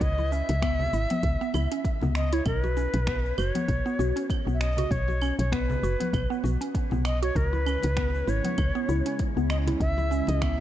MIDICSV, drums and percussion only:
0, 0, Header, 1, 2, 480
1, 0, Start_track
1, 0, Key_signature, 4, "minor"
1, 0, Tempo, 612245
1, 10, Time_signature, 4, 2, 24, 8
1, 8311, End_track
2, 0, Start_track
2, 0, Title_t, "Drums"
2, 8, Note_on_c, 9, 36, 107
2, 11, Note_on_c, 9, 42, 46
2, 17, Note_on_c, 9, 82, 45
2, 86, Note_off_c, 9, 36, 0
2, 89, Note_off_c, 9, 42, 0
2, 95, Note_off_c, 9, 82, 0
2, 141, Note_on_c, 9, 62, 57
2, 153, Note_on_c, 9, 82, 24
2, 220, Note_off_c, 9, 62, 0
2, 231, Note_off_c, 9, 82, 0
2, 255, Note_on_c, 9, 82, 82
2, 333, Note_off_c, 9, 82, 0
2, 383, Note_on_c, 9, 62, 72
2, 384, Note_on_c, 9, 42, 56
2, 390, Note_on_c, 9, 82, 34
2, 462, Note_off_c, 9, 42, 0
2, 462, Note_off_c, 9, 62, 0
2, 468, Note_off_c, 9, 82, 0
2, 488, Note_on_c, 9, 36, 110
2, 490, Note_on_c, 9, 26, 77
2, 490, Note_on_c, 9, 42, 45
2, 490, Note_on_c, 9, 75, 75
2, 496, Note_on_c, 9, 82, 44
2, 567, Note_off_c, 9, 36, 0
2, 568, Note_off_c, 9, 26, 0
2, 568, Note_off_c, 9, 42, 0
2, 568, Note_off_c, 9, 75, 0
2, 574, Note_off_c, 9, 82, 0
2, 622, Note_on_c, 9, 64, 97
2, 630, Note_on_c, 9, 82, 22
2, 700, Note_off_c, 9, 64, 0
2, 709, Note_off_c, 9, 82, 0
2, 733, Note_on_c, 9, 82, 84
2, 811, Note_off_c, 9, 82, 0
2, 863, Note_on_c, 9, 42, 55
2, 868, Note_on_c, 9, 63, 88
2, 870, Note_on_c, 9, 82, 36
2, 942, Note_off_c, 9, 42, 0
2, 946, Note_off_c, 9, 63, 0
2, 948, Note_off_c, 9, 82, 0
2, 967, Note_on_c, 9, 42, 48
2, 968, Note_on_c, 9, 36, 106
2, 973, Note_on_c, 9, 82, 47
2, 1045, Note_off_c, 9, 42, 0
2, 1046, Note_off_c, 9, 36, 0
2, 1051, Note_off_c, 9, 82, 0
2, 1110, Note_on_c, 9, 82, 22
2, 1189, Note_off_c, 9, 82, 0
2, 1206, Note_on_c, 9, 62, 67
2, 1208, Note_on_c, 9, 75, 79
2, 1214, Note_on_c, 9, 82, 83
2, 1284, Note_off_c, 9, 62, 0
2, 1287, Note_off_c, 9, 75, 0
2, 1293, Note_off_c, 9, 82, 0
2, 1345, Note_on_c, 9, 42, 57
2, 1351, Note_on_c, 9, 82, 34
2, 1424, Note_off_c, 9, 42, 0
2, 1430, Note_off_c, 9, 82, 0
2, 1447, Note_on_c, 9, 36, 112
2, 1450, Note_on_c, 9, 42, 46
2, 1457, Note_on_c, 9, 82, 45
2, 1525, Note_off_c, 9, 36, 0
2, 1529, Note_off_c, 9, 42, 0
2, 1535, Note_off_c, 9, 82, 0
2, 1580, Note_on_c, 9, 62, 65
2, 1590, Note_on_c, 9, 64, 92
2, 1590, Note_on_c, 9, 82, 23
2, 1658, Note_off_c, 9, 62, 0
2, 1668, Note_off_c, 9, 64, 0
2, 1668, Note_off_c, 9, 82, 0
2, 1686, Note_on_c, 9, 26, 75
2, 1692, Note_on_c, 9, 82, 85
2, 1765, Note_off_c, 9, 26, 0
2, 1771, Note_off_c, 9, 82, 0
2, 1823, Note_on_c, 9, 42, 56
2, 1829, Note_on_c, 9, 82, 34
2, 1902, Note_off_c, 9, 42, 0
2, 1908, Note_off_c, 9, 82, 0
2, 1926, Note_on_c, 9, 42, 45
2, 1926, Note_on_c, 9, 75, 77
2, 1928, Note_on_c, 9, 36, 114
2, 1932, Note_on_c, 9, 82, 49
2, 2004, Note_off_c, 9, 42, 0
2, 2004, Note_off_c, 9, 75, 0
2, 2006, Note_off_c, 9, 36, 0
2, 2010, Note_off_c, 9, 82, 0
2, 2066, Note_on_c, 9, 62, 51
2, 2067, Note_on_c, 9, 82, 23
2, 2145, Note_off_c, 9, 62, 0
2, 2145, Note_off_c, 9, 82, 0
2, 2171, Note_on_c, 9, 82, 78
2, 2249, Note_off_c, 9, 82, 0
2, 2302, Note_on_c, 9, 42, 55
2, 2302, Note_on_c, 9, 62, 65
2, 2308, Note_on_c, 9, 82, 34
2, 2380, Note_off_c, 9, 42, 0
2, 2381, Note_off_c, 9, 62, 0
2, 2387, Note_off_c, 9, 82, 0
2, 2407, Note_on_c, 9, 26, 81
2, 2407, Note_on_c, 9, 42, 42
2, 2408, Note_on_c, 9, 36, 107
2, 2413, Note_on_c, 9, 82, 44
2, 2486, Note_off_c, 9, 26, 0
2, 2486, Note_off_c, 9, 36, 0
2, 2486, Note_off_c, 9, 42, 0
2, 2492, Note_off_c, 9, 82, 0
2, 2551, Note_on_c, 9, 82, 23
2, 2630, Note_off_c, 9, 82, 0
2, 2649, Note_on_c, 9, 75, 78
2, 2656, Note_on_c, 9, 82, 78
2, 2728, Note_off_c, 9, 75, 0
2, 2734, Note_off_c, 9, 82, 0
2, 2781, Note_on_c, 9, 63, 87
2, 2784, Note_on_c, 9, 42, 58
2, 2790, Note_on_c, 9, 82, 36
2, 2860, Note_off_c, 9, 63, 0
2, 2863, Note_off_c, 9, 42, 0
2, 2869, Note_off_c, 9, 82, 0
2, 2888, Note_on_c, 9, 36, 105
2, 2889, Note_on_c, 9, 42, 47
2, 2895, Note_on_c, 9, 82, 48
2, 2966, Note_off_c, 9, 36, 0
2, 2968, Note_off_c, 9, 42, 0
2, 2974, Note_off_c, 9, 82, 0
2, 3030, Note_on_c, 9, 82, 21
2, 3108, Note_off_c, 9, 82, 0
2, 3137, Note_on_c, 9, 82, 80
2, 3216, Note_off_c, 9, 82, 0
2, 3267, Note_on_c, 9, 42, 53
2, 3273, Note_on_c, 9, 82, 37
2, 3345, Note_off_c, 9, 42, 0
2, 3351, Note_off_c, 9, 82, 0
2, 3368, Note_on_c, 9, 36, 112
2, 3374, Note_on_c, 9, 42, 44
2, 3374, Note_on_c, 9, 75, 82
2, 3380, Note_on_c, 9, 82, 47
2, 3447, Note_off_c, 9, 36, 0
2, 3452, Note_off_c, 9, 42, 0
2, 3452, Note_off_c, 9, 75, 0
2, 3458, Note_off_c, 9, 82, 0
2, 3515, Note_on_c, 9, 82, 23
2, 3594, Note_off_c, 9, 82, 0
2, 3612, Note_on_c, 9, 26, 84
2, 3618, Note_on_c, 9, 82, 87
2, 3691, Note_off_c, 9, 26, 0
2, 3697, Note_off_c, 9, 82, 0
2, 3739, Note_on_c, 9, 64, 92
2, 3748, Note_on_c, 9, 42, 52
2, 3754, Note_on_c, 9, 82, 35
2, 3817, Note_off_c, 9, 64, 0
2, 3826, Note_off_c, 9, 42, 0
2, 3832, Note_off_c, 9, 82, 0
2, 3848, Note_on_c, 9, 36, 117
2, 3854, Note_on_c, 9, 42, 46
2, 3860, Note_on_c, 9, 82, 48
2, 3927, Note_off_c, 9, 36, 0
2, 3932, Note_off_c, 9, 42, 0
2, 3939, Note_off_c, 9, 82, 0
2, 3982, Note_on_c, 9, 62, 55
2, 3993, Note_on_c, 9, 82, 22
2, 4061, Note_off_c, 9, 62, 0
2, 4072, Note_off_c, 9, 82, 0
2, 4089, Note_on_c, 9, 75, 79
2, 4095, Note_on_c, 9, 82, 76
2, 4167, Note_off_c, 9, 75, 0
2, 4174, Note_off_c, 9, 82, 0
2, 4227, Note_on_c, 9, 62, 64
2, 4228, Note_on_c, 9, 42, 53
2, 4234, Note_on_c, 9, 82, 34
2, 4306, Note_off_c, 9, 42, 0
2, 4306, Note_off_c, 9, 62, 0
2, 4312, Note_off_c, 9, 82, 0
2, 4329, Note_on_c, 9, 36, 105
2, 4333, Note_on_c, 9, 26, 77
2, 4333, Note_on_c, 9, 42, 42
2, 4339, Note_on_c, 9, 82, 46
2, 4407, Note_off_c, 9, 36, 0
2, 4411, Note_off_c, 9, 26, 0
2, 4411, Note_off_c, 9, 42, 0
2, 4417, Note_off_c, 9, 82, 0
2, 4466, Note_on_c, 9, 64, 107
2, 4476, Note_on_c, 9, 82, 23
2, 4545, Note_off_c, 9, 64, 0
2, 4554, Note_off_c, 9, 82, 0
2, 4578, Note_on_c, 9, 82, 83
2, 4656, Note_off_c, 9, 82, 0
2, 4708, Note_on_c, 9, 42, 57
2, 4714, Note_on_c, 9, 82, 35
2, 4715, Note_on_c, 9, 63, 90
2, 4786, Note_off_c, 9, 42, 0
2, 4792, Note_off_c, 9, 82, 0
2, 4793, Note_off_c, 9, 63, 0
2, 4809, Note_on_c, 9, 36, 109
2, 4812, Note_on_c, 9, 42, 44
2, 4812, Note_on_c, 9, 75, 83
2, 4818, Note_on_c, 9, 82, 47
2, 4887, Note_off_c, 9, 36, 0
2, 4891, Note_off_c, 9, 42, 0
2, 4891, Note_off_c, 9, 75, 0
2, 4897, Note_off_c, 9, 82, 0
2, 4953, Note_on_c, 9, 82, 22
2, 5032, Note_off_c, 9, 82, 0
2, 5046, Note_on_c, 9, 62, 58
2, 5047, Note_on_c, 9, 63, 35
2, 5058, Note_on_c, 9, 82, 83
2, 5124, Note_off_c, 9, 62, 0
2, 5126, Note_off_c, 9, 63, 0
2, 5137, Note_off_c, 9, 82, 0
2, 5187, Note_on_c, 9, 42, 56
2, 5193, Note_on_c, 9, 82, 35
2, 5265, Note_off_c, 9, 42, 0
2, 5271, Note_off_c, 9, 82, 0
2, 5289, Note_on_c, 9, 36, 109
2, 5291, Note_on_c, 9, 42, 46
2, 5297, Note_on_c, 9, 82, 47
2, 5367, Note_off_c, 9, 36, 0
2, 5370, Note_off_c, 9, 42, 0
2, 5376, Note_off_c, 9, 82, 0
2, 5418, Note_on_c, 9, 62, 63
2, 5419, Note_on_c, 9, 64, 81
2, 5431, Note_on_c, 9, 82, 21
2, 5496, Note_off_c, 9, 62, 0
2, 5498, Note_off_c, 9, 64, 0
2, 5509, Note_off_c, 9, 82, 0
2, 5527, Note_on_c, 9, 26, 75
2, 5527, Note_on_c, 9, 75, 76
2, 5533, Note_on_c, 9, 82, 81
2, 5605, Note_off_c, 9, 26, 0
2, 5605, Note_off_c, 9, 75, 0
2, 5612, Note_off_c, 9, 82, 0
2, 5666, Note_on_c, 9, 42, 51
2, 5672, Note_on_c, 9, 82, 31
2, 5744, Note_off_c, 9, 42, 0
2, 5750, Note_off_c, 9, 82, 0
2, 5769, Note_on_c, 9, 36, 110
2, 5771, Note_on_c, 9, 42, 43
2, 5777, Note_on_c, 9, 82, 48
2, 5847, Note_off_c, 9, 36, 0
2, 5850, Note_off_c, 9, 42, 0
2, 5856, Note_off_c, 9, 82, 0
2, 5901, Note_on_c, 9, 62, 44
2, 5912, Note_on_c, 9, 82, 23
2, 5979, Note_off_c, 9, 62, 0
2, 5990, Note_off_c, 9, 82, 0
2, 6009, Note_on_c, 9, 75, 79
2, 6015, Note_on_c, 9, 82, 77
2, 6088, Note_off_c, 9, 75, 0
2, 6094, Note_off_c, 9, 82, 0
2, 6135, Note_on_c, 9, 62, 69
2, 6142, Note_on_c, 9, 42, 55
2, 6148, Note_on_c, 9, 82, 33
2, 6214, Note_off_c, 9, 62, 0
2, 6220, Note_off_c, 9, 42, 0
2, 6227, Note_off_c, 9, 82, 0
2, 6246, Note_on_c, 9, 26, 70
2, 6246, Note_on_c, 9, 42, 40
2, 6249, Note_on_c, 9, 36, 94
2, 6252, Note_on_c, 9, 82, 40
2, 6325, Note_off_c, 9, 26, 0
2, 6325, Note_off_c, 9, 42, 0
2, 6327, Note_off_c, 9, 36, 0
2, 6331, Note_off_c, 9, 82, 0
2, 6388, Note_on_c, 9, 82, 23
2, 6466, Note_off_c, 9, 82, 0
2, 6494, Note_on_c, 9, 82, 83
2, 6573, Note_off_c, 9, 82, 0
2, 6617, Note_on_c, 9, 63, 85
2, 6621, Note_on_c, 9, 42, 59
2, 6627, Note_on_c, 9, 82, 34
2, 6696, Note_off_c, 9, 63, 0
2, 6700, Note_off_c, 9, 42, 0
2, 6706, Note_off_c, 9, 82, 0
2, 6726, Note_on_c, 9, 42, 48
2, 6726, Note_on_c, 9, 75, 84
2, 6729, Note_on_c, 9, 36, 108
2, 6732, Note_on_c, 9, 82, 48
2, 6804, Note_off_c, 9, 42, 0
2, 6804, Note_off_c, 9, 75, 0
2, 6807, Note_off_c, 9, 36, 0
2, 6810, Note_off_c, 9, 82, 0
2, 6867, Note_on_c, 9, 82, 21
2, 6946, Note_off_c, 9, 82, 0
2, 6970, Note_on_c, 9, 82, 82
2, 7048, Note_off_c, 9, 82, 0
2, 7102, Note_on_c, 9, 42, 55
2, 7108, Note_on_c, 9, 82, 34
2, 7180, Note_off_c, 9, 42, 0
2, 7187, Note_off_c, 9, 82, 0
2, 7207, Note_on_c, 9, 42, 46
2, 7208, Note_on_c, 9, 36, 97
2, 7213, Note_on_c, 9, 82, 49
2, 7285, Note_off_c, 9, 42, 0
2, 7286, Note_off_c, 9, 36, 0
2, 7291, Note_off_c, 9, 82, 0
2, 7350, Note_on_c, 9, 82, 22
2, 7429, Note_off_c, 9, 82, 0
2, 7447, Note_on_c, 9, 26, 73
2, 7447, Note_on_c, 9, 75, 77
2, 7453, Note_on_c, 9, 82, 77
2, 7526, Note_off_c, 9, 26, 0
2, 7526, Note_off_c, 9, 75, 0
2, 7532, Note_off_c, 9, 82, 0
2, 7581, Note_on_c, 9, 64, 85
2, 7585, Note_on_c, 9, 42, 51
2, 7592, Note_on_c, 9, 82, 32
2, 7659, Note_off_c, 9, 64, 0
2, 7664, Note_off_c, 9, 42, 0
2, 7670, Note_off_c, 9, 82, 0
2, 7687, Note_on_c, 9, 36, 98
2, 7688, Note_on_c, 9, 42, 43
2, 7694, Note_on_c, 9, 82, 44
2, 7765, Note_off_c, 9, 36, 0
2, 7766, Note_off_c, 9, 42, 0
2, 7773, Note_off_c, 9, 82, 0
2, 7815, Note_on_c, 9, 62, 52
2, 7829, Note_on_c, 9, 82, 21
2, 7893, Note_off_c, 9, 62, 0
2, 7907, Note_off_c, 9, 82, 0
2, 7934, Note_on_c, 9, 82, 75
2, 8012, Note_off_c, 9, 82, 0
2, 8053, Note_on_c, 9, 62, 68
2, 8064, Note_on_c, 9, 42, 54
2, 8070, Note_on_c, 9, 82, 31
2, 8131, Note_off_c, 9, 62, 0
2, 8142, Note_off_c, 9, 42, 0
2, 8149, Note_off_c, 9, 82, 0
2, 8167, Note_on_c, 9, 26, 73
2, 8167, Note_on_c, 9, 36, 99
2, 8167, Note_on_c, 9, 42, 44
2, 8167, Note_on_c, 9, 75, 84
2, 8173, Note_on_c, 9, 82, 39
2, 8246, Note_off_c, 9, 26, 0
2, 8246, Note_off_c, 9, 36, 0
2, 8246, Note_off_c, 9, 42, 0
2, 8246, Note_off_c, 9, 75, 0
2, 8252, Note_off_c, 9, 82, 0
2, 8311, End_track
0, 0, End_of_file